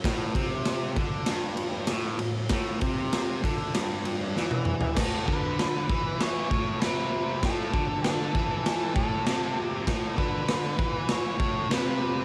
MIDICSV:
0, 0, Header, 1, 4, 480
1, 0, Start_track
1, 0, Tempo, 617284
1, 33, Time_signature, 4, 2, 24, 8
1, 5312, Tempo, 609137
1, 9580, End_track
2, 0, Start_track
2, 0, Title_t, "Lead electric guitar"
2, 0, Program_c, 0, 29
2, 4113, Note_on_c, 0, 71, 103
2, 4811, Note_off_c, 0, 71, 0
2, 4844, Note_on_c, 0, 73, 83
2, 5291, Note_on_c, 0, 71, 86
2, 5302, Note_off_c, 0, 73, 0
2, 5769, Note_off_c, 0, 71, 0
2, 5802, Note_on_c, 0, 69, 86
2, 6254, Note_off_c, 0, 69, 0
2, 6264, Note_on_c, 0, 69, 89
2, 6970, Note_off_c, 0, 69, 0
2, 6989, Note_on_c, 0, 69, 92
2, 7459, Note_off_c, 0, 69, 0
2, 7952, Note_on_c, 0, 71, 109
2, 8652, Note_off_c, 0, 71, 0
2, 8694, Note_on_c, 0, 73, 96
2, 9150, Note_off_c, 0, 73, 0
2, 9179, Note_on_c, 0, 71, 100
2, 9580, Note_off_c, 0, 71, 0
2, 9580, End_track
3, 0, Start_track
3, 0, Title_t, "Distorted electric guitar"
3, 0, Program_c, 1, 30
3, 36, Note_on_c, 1, 45, 110
3, 269, Note_off_c, 1, 45, 0
3, 277, Note_on_c, 1, 48, 101
3, 750, Note_off_c, 1, 48, 0
3, 756, Note_on_c, 1, 50, 106
3, 990, Note_off_c, 1, 50, 0
3, 1002, Note_on_c, 1, 43, 101
3, 1474, Note_off_c, 1, 43, 0
3, 1478, Note_on_c, 1, 45, 101
3, 1709, Note_off_c, 1, 45, 0
3, 1718, Note_on_c, 1, 45, 73
3, 1911, Note_off_c, 1, 45, 0
3, 1957, Note_on_c, 1, 45, 107
3, 2184, Note_off_c, 1, 45, 0
3, 2187, Note_on_c, 1, 48, 101
3, 2664, Note_off_c, 1, 48, 0
3, 2667, Note_on_c, 1, 50, 96
3, 2907, Note_off_c, 1, 50, 0
3, 2908, Note_on_c, 1, 43, 94
3, 3386, Note_off_c, 1, 43, 0
3, 3391, Note_on_c, 1, 52, 112
3, 3867, Note_off_c, 1, 52, 0
3, 3875, Note_on_c, 1, 45, 101
3, 4094, Note_off_c, 1, 45, 0
3, 4098, Note_on_c, 1, 50, 105
3, 4579, Note_off_c, 1, 50, 0
3, 4589, Note_on_c, 1, 52, 97
3, 5063, Note_off_c, 1, 52, 0
3, 5068, Note_on_c, 1, 45, 98
3, 5308, Note_off_c, 1, 45, 0
3, 5308, Note_on_c, 1, 48, 112
3, 5784, Note_off_c, 1, 48, 0
3, 5787, Note_on_c, 1, 45, 107
3, 6019, Note_off_c, 1, 45, 0
3, 6023, Note_on_c, 1, 50, 108
3, 6502, Note_off_c, 1, 50, 0
3, 6506, Note_on_c, 1, 52, 112
3, 6981, Note_off_c, 1, 52, 0
3, 6984, Note_on_c, 1, 45, 103
3, 7224, Note_off_c, 1, 45, 0
3, 7232, Note_on_c, 1, 48, 114
3, 7708, Note_off_c, 1, 48, 0
3, 7711, Note_on_c, 1, 45, 104
3, 7936, Note_off_c, 1, 45, 0
3, 7936, Note_on_c, 1, 50, 106
3, 8419, Note_off_c, 1, 50, 0
3, 8423, Note_on_c, 1, 52, 106
3, 8894, Note_off_c, 1, 52, 0
3, 8897, Note_on_c, 1, 45, 106
3, 9139, Note_off_c, 1, 45, 0
3, 9148, Note_on_c, 1, 48, 115
3, 9580, Note_off_c, 1, 48, 0
3, 9580, End_track
4, 0, Start_track
4, 0, Title_t, "Drums"
4, 32, Note_on_c, 9, 36, 116
4, 38, Note_on_c, 9, 51, 98
4, 40, Note_on_c, 9, 38, 114
4, 110, Note_off_c, 9, 36, 0
4, 116, Note_off_c, 9, 51, 0
4, 118, Note_off_c, 9, 38, 0
4, 272, Note_on_c, 9, 36, 95
4, 276, Note_on_c, 9, 51, 66
4, 349, Note_off_c, 9, 36, 0
4, 354, Note_off_c, 9, 51, 0
4, 507, Note_on_c, 9, 51, 80
4, 509, Note_on_c, 9, 38, 107
4, 585, Note_off_c, 9, 51, 0
4, 587, Note_off_c, 9, 38, 0
4, 748, Note_on_c, 9, 51, 60
4, 750, Note_on_c, 9, 36, 100
4, 826, Note_off_c, 9, 51, 0
4, 828, Note_off_c, 9, 36, 0
4, 980, Note_on_c, 9, 51, 98
4, 982, Note_on_c, 9, 38, 113
4, 1057, Note_off_c, 9, 51, 0
4, 1060, Note_off_c, 9, 38, 0
4, 1221, Note_on_c, 9, 51, 72
4, 1298, Note_off_c, 9, 51, 0
4, 1454, Note_on_c, 9, 51, 96
4, 1456, Note_on_c, 9, 38, 114
4, 1531, Note_off_c, 9, 51, 0
4, 1534, Note_off_c, 9, 38, 0
4, 1701, Note_on_c, 9, 51, 70
4, 1779, Note_off_c, 9, 51, 0
4, 1938, Note_on_c, 9, 51, 99
4, 1941, Note_on_c, 9, 38, 111
4, 1948, Note_on_c, 9, 36, 106
4, 2016, Note_off_c, 9, 51, 0
4, 2018, Note_off_c, 9, 38, 0
4, 2026, Note_off_c, 9, 36, 0
4, 2186, Note_on_c, 9, 51, 74
4, 2191, Note_on_c, 9, 36, 99
4, 2264, Note_off_c, 9, 51, 0
4, 2268, Note_off_c, 9, 36, 0
4, 2431, Note_on_c, 9, 51, 96
4, 2433, Note_on_c, 9, 38, 110
4, 2509, Note_off_c, 9, 51, 0
4, 2511, Note_off_c, 9, 38, 0
4, 2673, Note_on_c, 9, 36, 97
4, 2681, Note_on_c, 9, 51, 73
4, 2751, Note_off_c, 9, 36, 0
4, 2759, Note_off_c, 9, 51, 0
4, 2912, Note_on_c, 9, 51, 97
4, 2914, Note_on_c, 9, 38, 121
4, 2990, Note_off_c, 9, 51, 0
4, 2992, Note_off_c, 9, 38, 0
4, 3151, Note_on_c, 9, 51, 75
4, 3229, Note_off_c, 9, 51, 0
4, 3396, Note_on_c, 9, 38, 63
4, 3474, Note_off_c, 9, 38, 0
4, 3507, Note_on_c, 9, 48, 68
4, 3584, Note_off_c, 9, 48, 0
4, 3617, Note_on_c, 9, 45, 82
4, 3695, Note_off_c, 9, 45, 0
4, 3738, Note_on_c, 9, 43, 95
4, 3815, Note_off_c, 9, 43, 0
4, 3860, Note_on_c, 9, 49, 119
4, 3860, Note_on_c, 9, 57, 63
4, 3862, Note_on_c, 9, 38, 117
4, 3866, Note_on_c, 9, 36, 112
4, 3938, Note_off_c, 9, 49, 0
4, 3938, Note_off_c, 9, 57, 0
4, 3940, Note_off_c, 9, 38, 0
4, 3944, Note_off_c, 9, 36, 0
4, 4105, Note_on_c, 9, 36, 98
4, 4183, Note_off_c, 9, 36, 0
4, 4348, Note_on_c, 9, 57, 59
4, 4350, Note_on_c, 9, 38, 100
4, 4425, Note_off_c, 9, 57, 0
4, 4428, Note_off_c, 9, 38, 0
4, 4584, Note_on_c, 9, 36, 103
4, 4662, Note_off_c, 9, 36, 0
4, 4824, Note_on_c, 9, 57, 65
4, 4826, Note_on_c, 9, 38, 117
4, 4902, Note_off_c, 9, 57, 0
4, 4904, Note_off_c, 9, 38, 0
4, 5063, Note_on_c, 9, 36, 100
4, 5141, Note_off_c, 9, 36, 0
4, 5300, Note_on_c, 9, 57, 61
4, 5302, Note_on_c, 9, 38, 114
4, 5378, Note_off_c, 9, 57, 0
4, 5381, Note_off_c, 9, 38, 0
4, 5781, Note_on_c, 9, 57, 60
4, 5783, Note_on_c, 9, 36, 108
4, 5784, Note_on_c, 9, 38, 114
4, 5860, Note_off_c, 9, 57, 0
4, 5862, Note_off_c, 9, 36, 0
4, 5863, Note_off_c, 9, 38, 0
4, 6025, Note_on_c, 9, 36, 100
4, 6104, Note_off_c, 9, 36, 0
4, 6266, Note_on_c, 9, 57, 63
4, 6269, Note_on_c, 9, 38, 105
4, 6345, Note_off_c, 9, 57, 0
4, 6347, Note_off_c, 9, 38, 0
4, 6508, Note_on_c, 9, 36, 97
4, 6587, Note_off_c, 9, 36, 0
4, 6752, Note_on_c, 9, 57, 71
4, 6754, Note_on_c, 9, 38, 115
4, 6831, Note_off_c, 9, 57, 0
4, 6833, Note_off_c, 9, 38, 0
4, 6987, Note_on_c, 9, 36, 113
4, 7066, Note_off_c, 9, 36, 0
4, 7228, Note_on_c, 9, 57, 62
4, 7231, Note_on_c, 9, 38, 120
4, 7307, Note_off_c, 9, 57, 0
4, 7310, Note_off_c, 9, 38, 0
4, 7707, Note_on_c, 9, 36, 107
4, 7709, Note_on_c, 9, 57, 62
4, 7711, Note_on_c, 9, 38, 119
4, 7786, Note_off_c, 9, 36, 0
4, 7788, Note_off_c, 9, 57, 0
4, 7790, Note_off_c, 9, 38, 0
4, 7951, Note_on_c, 9, 36, 100
4, 8030, Note_off_c, 9, 36, 0
4, 8189, Note_on_c, 9, 57, 57
4, 8192, Note_on_c, 9, 38, 114
4, 8268, Note_off_c, 9, 57, 0
4, 8271, Note_off_c, 9, 38, 0
4, 8430, Note_on_c, 9, 36, 108
4, 8509, Note_off_c, 9, 36, 0
4, 8664, Note_on_c, 9, 57, 64
4, 8666, Note_on_c, 9, 38, 113
4, 8743, Note_off_c, 9, 57, 0
4, 8745, Note_off_c, 9, 38, 0
4, 8911, Note_on_c, 9, 36, 108
4, 8990, Note_off_c, 9, 36, 0
4, 9156, Note_on_c, 9, 57, 58
4, 9159, Note_on_c, 9, 38, 118
4, 9235, Note_off_c, 9, 57, 0
4, 9238, Note_off_c, 9, 38, 0
4, 9580, End_track
0, 0, End_of_file